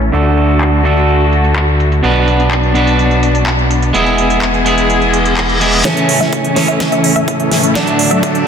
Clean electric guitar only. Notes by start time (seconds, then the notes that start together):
Already playing: A2 C#4 E4 A4 C#5
0.12 D3 A3 D4 F#4 A4
0.84 D3 A3 D4 F#4 A4
2.03 B2 B3 D4 F#4 B4
2.74 B2 B3 D4 F#4 B4
3.93 G#3 B3 E4 G#4
4.65 G#3 B3 E4 G#4
5.60 G#3 B3 E4 G#4
5.84 C#3 E3 A3 C#4
6.55 C#3 E3 A3 C#4
7.74 D3 F#3 A3 D4